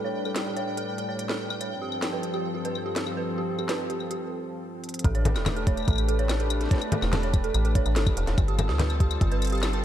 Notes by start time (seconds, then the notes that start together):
Already playing: A2 G3 D4 B4 G5
0.05 C#5
0.25 A4, claves
0.36 snare, closed hi-hat
0.46 A4
0.57 C#5, closed hi-hat
0.77 A4, closed hi-hat
0.98 A4, closed hi-hat
1.09 C#5
1.19 closed hi-hat
1.29 A4, snare
1.50 A4, claves
1.61 C#5, closed hi-hat, claves
1.71 G2 F3 C4 A4
1.82 G4
1.92 claves
2.02 G4, snare, closed hi-hat
2.13 B4
2.23 closed hi-hat
2.34 G4, claves
2.54 G4
2.65 B4, closed hi-hat
2.75 claves
2.86 G4
2.96 snare, closed hi-hat
3.07 G4, claves
3.17 B4
3.38 G4
3.59 G4, claves
3.69 B4, snare, closed hi-hat
3.90 G4, closed hi-hat
4.00 claves
4.11 G4, closed hi-hat
4.84 closed hi-hat
4.89 closed hi-hat
4.94 closed hi-hat
4.99 closed hi-hat
5.04 A1 A3 D4 G4 A4 B4 A5, kick, closed hi-hat
5.15 C#5, closed hi-hat
5.25 closed hi-hat, low conga
5.36 E1 A4, snare, closed hi-hat, claves
5.46 snare, closed hi-hat, low conga, claves
5.57 A4, closed hi-hat
5.67 C#5, kick, closed hi-hat
5.77 closed hi-hat, claves
5.80 claves
5.83 claves
5.85 A4, closed hi-hat, claves
5.88 A1, kick, claves
5.90 claves
5.93 claves
5.96 closed hi-hat, claves
5.98 claves
6.09 A4, closed hi-hat
6.19 C#5, closed hi-hat
6.29 snare, closed hi-hat, claves
6.40 A4, closed hi-hat
6.50 closed hi-hat, claves
6.61 A4, snare, closed hi-hat
6.64 snare
6.68 snare
6.71 C#5, kick, snare, closed hi-hat
6.75 snare
6.78 snare, closed hi-hat, claves
6.92 A4, closed hi-hat, low conga
7.02 E1, snare, claves
7.13 A4, snare, closed hi-hat, low conga
7.23 C#5, closed hi-hat
7.34 kick, closed hi-hat, claves
7.44 A4, closed hi-hat
7.54 A1, closed hi-hat, claves
7.65 A4, closed hi-hat
7.75 C#5, kick, closed hi-hat
7.86 A1, closed hi-hat, claves
7.96 G1 A4, snare, closed hi-hat
8.07 kick, closed hi-hat, claves
8.17 E1 A4, closed hi-hat
8.27 E1 C#5, snare, closed hi-hat
8.38 G1 G3 C4 F4 A4, kick, closed hi-hat, claves
8.48 G4, closed hi-hat
8.59 closed hi-hat, low conga, claves
8.69 D2 G4, snare
8.79 B4, snare, closed hi-hat, low conga
8.90 closed hi-hat, claves
9.00 G4, kick, closed hi-hat
9.11 closed hi-hat, claves
9.21 G1 G4, kick, closed hi-hat
9.32 B4, closed hi-hat
9.42 closed hi-hat, claves
9.45 closed hi-hat
9.47 closed hi-hat
9.50 closed hi-hat
9.52 G4, closed hi-hat
9.55 closed hi-hat
9.58 closed hi-hat
9.60 snare, closed hi-hat
9.63 closed hi-hat, claves
9.73 G4, closed hi-hat